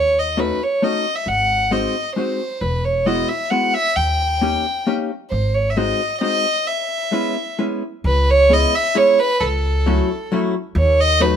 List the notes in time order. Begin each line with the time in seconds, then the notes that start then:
Already playing: D#2 C#5
0.19 D#5
0.37 A3 C#4 D#4 F#4 B4
0.63 C#5
0.82 A3 C#4 D#4 F#4 D#5
1.16 E5
1.26 G#1 F#5
1.71 G#3 C4 D#4 F#4 D#5
2.16 G#3 C4 D#4 F#4 C5
2.61 E1 B4
2.85 C#5
3.06 G#3 B3 E4 F#4 D#5
3.29 E5
3.50 G#3 B3 E4 F#4 F#5
3.74 E5
3.96 D#2 G5
4.41 A#3 C#4 D#4 G4
4.87 A#3 C#4 D#4 G4
5.31 G#1 C5
5.55 C#5
5.70 E5
5.77 G#3 C4 D#4 F#4 D#5
6.21 G#3 C4 D#4 F#4 D#5
6.68 E5
7.12 G#3 B3 C#4 E4
7.59 G#3 B3 C#4 E4
8.04 C#2 B4
8.30 C#5
8.50 G#3 B3 C#4 E4 G#4 D#5
8.75 E5
8.95 G#3 B3 C#4 E4 G#4 C#5
9.19 B4
9.41 C#2 A4
9.86 F#3 A3 C#4 E4 F#4
10.32 F#3 A3 C#4 E4 F#4
10.75 D#2 C#5
11.01 D#5
11.20 F#3 A3 C#4 D#4 F#4 B4